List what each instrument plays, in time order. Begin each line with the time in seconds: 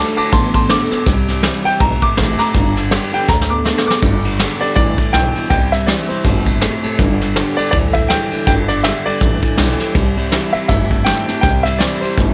Already playing: clean electric guitar D3 A3, steel-string acoustic guitar D3 A3 D4 F#4, upright piano A5 D6
0.17 clean electric guitar D3 A3, steel-string acoustic guitar D4 F#4, upright piano A5 D6, muted upright bass stroke, ride
0.32 upright bass A1, steel-string acoustic guitar A2, clean electric guitar D3 B3, upright piano A5 C6, kick, snare, ride
0.54 clean electric guitar D3 B3, upright piano A5 C6, kick, ride
0.69 steel-string acoustic guitar D3 A3 D4 F#4, clean electric guitar D3 B3, upright piano D6, snare, ride
0.91 clean electric guitar D3 B3, steel-string acoustic guitar D4 F#4, muted upright bass stroke, snare, ride
1.06 upright bass C2, clean electric guitar C3 G3, steel-string acoustic guitar C3, kick, snare, ride
1.28 clean electric guitar C3 G3, snare, ride
1.43 clean electric guitar C3 G3, steel-string acoustic guitar E3 G3 C4 E4, snare, ride
1.64 clean electric guitar C3 G3, steel-string acoustic guitar C4 E4, upright piano G5, muted upright bass stroke, ride
1.80 upright bass B1, steel-string acoustic guitar B2, clean electric guitar C3 A3, upright piano A#5, kick, ride
2.02 clean electric guitar C3 A3, upright piano D6, muted upright bass stroke, kick, ride
2.17 upright bass A1, steel-string acoustic guitar A2, clean electric guitar C3 A3, snare, ride
2.39 clean electric guitar C3 A3, upright piano A#5 D6, muted upright bass stroke, snare, ride
2.54 upright bass G1, clean electric guitar G2 D3, steel-string acoustic guitar G2, kick, snare, ride
2.76 clean electric guitar G2 D3, snare, ride
2.91 clean electric guitar G2 D3, steel-string acoustic guitar D3 G3 B3 G4, snare, ride
3.13 clean electric guitar G2 D3, steel-string acoustic guitar B3 G4, upright piano G5, muted upright bass stroke, ride
3.28 upright bass D2, steel-string acoustic guitar D3, clean electric guitar D3 A3, upright piano A#5, kick, snare
3.41 snare
3.50 clean electric guitar D3 B3, upright piano D6
3.65 steel-string acoustic guitar D3 A3 D4 F#4, clean electric guitar D3 B3, snare
3.78 snare
3.87 clean electric guitar D3 B3, steel-string acoustic guitar D4 F#4, upright piano D6, muted upright bass stroke, snare
4.02 upright bass G1, clean electric guitar G2 D3, steel-string acoustic guitar G2, kick, snare, crash
4.24 clean electric guitar G2 D3, ride
4.39 clean electric guitar G2 D3, steel-string acoustic guitar D3 G3 B3 G4, snare, ride
4.61 clean electric guitar G2 D3, steel-string acoustic guitar B3 G4, upright piano D5, muted upright bass stroke, ride
4.76 upright bass A1, clean electric guitar G2 E3, steel-string acoustic guitar A2, upright piano D5, kick, ride
4.98 clean electric guitar G2 E3, muted upright bass stroke, kick, ride
5.13 upright bass B1, clean electric guitar G2 E3, steel-string acoustic guitar B2, upright piano G5, snare, ride
5.35 clean electric guitar G2 E3, muted upright bass stroke, ride
5.50 upright bass C2, clean electric guitar C3 G3, steel-string acoustic guitar C3, upright piano G5, kick, snare, ride
5.72 clean electric guitar C3 G3, upright piano E5, snare, ride
5.86 clean electric guitar C3 G3, steel-string acoustic guitar E3 G3 C4 E4, upright piano D5, snare, ride
6.08 clean electric guitar C3 G3, steel-string acoustic guitar C4 E4, upright piano C5, muted upright bass stroke, ride
6.25 upright bass G1, steel-string acoustic guitar B2, clean electric guitar C3 A3, kick, snare, ride
6.46 clean electric guitar C3 A3, kick, ride
6.61 steel-string acoustic guitar A2, clean electric guitar C3 A3, snare, ride
6.83 clean electric guitar C3 A3, muted upright bass stroke, ride
6.99 upright bass G1, clean electric guitar G2 D3, steel-string acoustic guitar G2, kick, snare, ride
7.21 clean electric guitar G2 D3, snare, ride
7.36 clean electric guitar G2 D3, steel-string acoustic guitar D3 G3 B3 G4, snare, ride
7.57 clean electric guitar G2 D3, steel-string acoustic guitar B3 G4, upright piano D5, muted upright bass stroke, ride
7.71 upright bass D2, clean electric guitar G2 E3, steel-string acoustic guitar D3, upright piano D5, kick, ride
7.93 clean electric guitar G2 E3, upright piano E5, kick, ride
8.09 clean electric guitar G2 E3, steel-string acoustic guitar D3 G3 B3 G4, upright piano G5, snare, ride
8.32 clean electric guitar G2 E3, muted upright bass stroke, ride
8.47 upright bass G1, steel-string acoustic guitar G2, clean electric guitar G2 D3, upright piano G5, kick, snare, ride
8.68 clean electric guitar G2 D3, upright piano D5, snare, ride
8.83 clean electric guitar G2 D3, steel-string acoustic guitar D3 G3 B3 G4, upright piano E5, snare, ride
9.06 clean electric guitar G2 D3, steel-string acoustic guitar B3 G4, upright piano D5, muted upright bass stroke, ride
9.21 upright bass A1, clean electric guitar G2 E3, steel-string acoustic guitar D3, kick, snare, ride
9.43 clean electric guitar G2 E3, muted upright bass stroke, kick, ride
9.58 upright bass B1, clean electric guitar G2 E3, steel-string acoustic guitar D3 G3 B3 G4, snare, ride
9.80 clean electric guitar G2 E3, steel-string acoustic guitar B3 G4, snare, ride
9.95 upright bass C2, clean electric guitar C3 G3, steel-string acoustic guitar C3, kick, snare, ride
10.17 clean electric guitar C3 G3, ride
10.32 clean electric guitar C3 G3, steel-string acoustic guitar E3 G3 C4 E4, snare, ride
10.53 clean electric guitar C3 G3, steel-string acoustic guitar C4, upright piano E5, muted upright bass stroke, ride
10.68 upright bass G1, steel-string acoustic guitar G2, clean electric guitar C3 A3, upright piano E5, kick, snare, ride
10.91 clean electric guitar C3 A3, kick, ride
11.04 clean electric guitar C3 A3, steel-string acoustic guitar E3 G3 C4 E4, upright piano G5, snare, ride
11.28 clean electric guitar C3 A3, steel-string acoustic guitar C4 E4, muted upright bass stroke, snare, ride
11.41 upright bass C2, clean electric guitar C3 G3, steel-string acoustic guitar C3, upright piano G5, kick, snare, ride
11.63 clean electric guitar C3 G3, upright piano E5, snare, ride
11.78 clean electric guitar C3 G3, steel-string acoustic guitar E3 G3 C4 E4, upright piano D5, snare, ride
12.00 clean electric guitar C3 G3, steel-string acoustic guitar C4 E4, upright piano C5, muted upright bass stroke, ride
12.17 upright bass G1, steel-string acoustic guitar B2, clean electric guitar C3 A3, kick, snare, ride